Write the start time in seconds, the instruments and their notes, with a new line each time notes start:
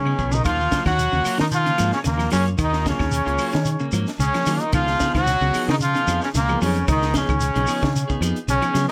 Already playing: fingered electric bass C#3, baritone saxophone C#3, trombone C#4, trumpet C#5
0.05 clean electric guitar C#3 B3 D#4 G#4, claves
0.18 fingered electric bass B1, clean electric guitar F3 B3 G#4, muted clean electric guitar stroke, kick, shekere
0.31 clean electric guitar C#3, baritone saxophone D#3, trombone D#4, trumpet D#5, floor tom, shekere
0.45 fingered electric bass D#2, clean electric guitar D#3 F#3 A#3 C#4 F4, baritone saxophone F3, trombone F4, trumpet F5, kick, closed hi-hat, claves, shekere
0.60 clean electric guitar A#3 C#4 F4, shekere
0.71 clean electric guitar C#3 F#3 A#3 C#4 F4, kick, snare, closed hi-hat, shekere
0.85 fingered electric bass D#2, clean electric guitar D#3, baritone saxophone F#3, trombone F#4, trumpet F#5, kick, snare, closed hi-hat, claves, shekere
0.99 closed hi-hat, shekere
1.12 fingered electric bass D#2, clean electric guitar C#3 A#3 C#4 F4, shekere
1.24 clean electric guitar F#3 A#3 C#4 F4, muted fingered electric bass stroke, open hi-hat, claves, shekere
1.38 clean electric guitar D#3, baritone saxophone D#3, fingered electric bass D#3, trombone D#4, trumpet D#5, snare, shekere
1.51 baritone saxophone F3, trombone F4, trumpet F5, closed hi-hat, shekere
1.65 clean electric guitar C#3 A#3 C#4 F4, closed hi-hat, shekere
1.78 fingered electric bass G#2, clean electric guitar F3 F#3 A#3 C#4 F4, snare, closed hi-hat, claves, shekere
1.92 baritone saxophone C#3, trombone C#4, snare, shekere
1.96 trumpet C#5
2.04 fingered electric bass D#2, baritone saxophone A#2, clean electric guitar C#3, trombone A#3, snare, closed hi-hat, shekere
2.09 trumpet A#4
2.18 clean electric guitar F3 A#3 F4, snare, claves, shekere
2.30 fingered electric bass F#2, baritone saxophone C#3, clean electric guitar F#3 A#3 C#4 F4, trombone C#4, open hi-hat, shekere
2.38 trumpet C#5
2.46 closed hi-hat, shekere
2.58 fingered electric bass D#2, baritone saxophone D#3, clean electric guitar D#3, kick, closed hi-hat, claves, shekere
2.63 trombone D#4, trumpet D#5
2.72 clean electric guitar A#3 C#4 F4, snare, shekere
2.84 clean electric guitar C#3 F#3 A#3 C#4 F4, baritone saxophone C#3, kick, snare, closed hi-hat, shekere
2.89 trombone C#4, trumpet C#5
2.99 fingered electric bass D#2, clean electric guitar D#3, kick, snare, claves, shekere
3.11 closed hi-hat, shekere
3.25 fingered electric bass C#2, clean electric guitar C#3 A#3 C#4 F4, closed hi-hat, shekere
3.38 clean electric guitar F#3 A#3 C#4 F4, open hi-hat, claves, shekere
3.52 clean electric guitar D#3, fingered electric bass D#3, snare, closed hi-hat, shekere
3.65 closed hi-hat, shekere
3.79 clean electric guitar C#3 A#3 C#4, shekere
3.92 fingered electric bass G#2, clean electric guitar F3 F#3 A#3 C#4, muted clean electric guitar stroke, closed hi-hat, claves, shekere
4.07 snare, closed hi-hat, shekere
4.19 fingered electric bass C#2, clean electric guitar C#3, baritone saxophone C#3, trombone C#4, trumpet C#5, closed hi-hat, shekere
4.34 clean electric guitar F3 A#3 C#4, snare, closed hi-hat, claves, shekere
4.46 fingered electric bass D#3, clean electric guitar F#3 A#3 C#4 F4, snare, open hi-hat, shekere
4.60 trombone D#4, trumpet D#5, closed hi-hat, shekere
4.65 baritone saxophone D#3
4.72 fingered electric bass C#2, clean electric guitar D#3 F3 B3 D#4 G#4, baritone saxophone F3, trombone F4, trumpet F5, kick, closed hi-hat, claves, shekere
4.87 clean electric guitar B3 D#4 G#4, snare, shekere
4.99 clean electric guitar C#3 F3 B3 D#4 G#4, kick, snare, closed hi-hat, shekere
5.14 fingered electric bass C#2, clean electric guitar D#3, baritone saxophone F#3, trombone F#4, trumpet F#5, kick, snare, closed hi-hat, claves, shekere
5.27 snare, closed hi-hat, shekere
5.40 fingered electric bass C#2, clean electric guitar C#3 B3 G#4, shekere
5.53 clean electric guitar F3 B3 D#4 G#4, muted fingered electric bass stroke, open hi-hat, claves, shekere
5.68 fingered electric bass C#3, clean electric guitar D#3, baritone saxophone D#3, trombone D#4, trumpet D#5, snare, shekere
5.80 baritone saxophone F3, trombone F4, trumpet F5, closed hi-hat, shekere
5.93 clean electric guitar C#3 B3 D#4 G#4, closed hi-hat, shekere
6.06 fingered electric bass F2, clean electric guitar F3 B3 D#4 G#4, closed hi-hat, claves, shekere
6.21 baritone saxophone C#3, trombone C#4, trumpet C#5, snare, shekere
6.34 fingered electric bass C#2, clean electric guitar C#3, trombone A#3, snare, closed hi-hat, shekere
6.39 baritone saxophone A#2, trumpet A#4
6.48 clean electric guitar F3 B3 D#4 G#4, claves, shekere
6.61 fingered electric bass F2, clean electric guitar F3 F#3 B3 D#4 G#4, trombone C#4, open hi-hat, shekere
6.66 baritone saxophone C#3, trumpet C#5
6.75 closed hi-hat, shekere
6.88 fingered electric bass C#2, clean electric guitar D#3, baritone saxophone D#3, trombone D#4, kick, closed hi-hat, claves, shekere
6.95 trumpet D#5
7.01 clean electric guitar B3 D#4 G#4, snare, shekere
7.14 clean electric guitar C#3 F3 B3 D#4 G#4, baritone saxophone C#3, kick, snare, closed hi-hat, shekere
7.18 trombone C#4, trumpet C#5
7.29 fingered electric bass C#2, clean electric guitar D#3, kick, claves, shekere
7.40 closed hi-hat, shekere
7.54 fingered electric bass B1, clean electric guitar C#3 B3 D#4 G#4, closed hi-hat, shekere
7.67 clean electric guitar F3 B3 D#4 G#4, open hi-hat, claves, shekere
7.82 fingered electric bass C#3, clean electric guitar D#3, kick, snare, shekere
7.96 closed hi-hat, shekere
8.08 clean electric guitar C#3 B3 D#4 G#4, kick, shekere
8.21 fingered electric bass F2, clean electric guitar F3 B3 D#4 G#4, closed hi-hat, claves, shekere
8.36 closed hi-hat, shekere
8.48 fingered electric bass B1, clean electric guitar C#3, baritone saxophone C#3, trombone C#4, trumpet C#5, closed hi-hat, shekere
8.61 clean electric guitar F3 B3 D#4 G#4, closed hi-hat, claves, shekere
8.74 fingered electric bass C#3, clean electric guitar F3 F#3 B3 G#4, snare, closed hi-hat, shekere
8.88 baritone saxophone D#3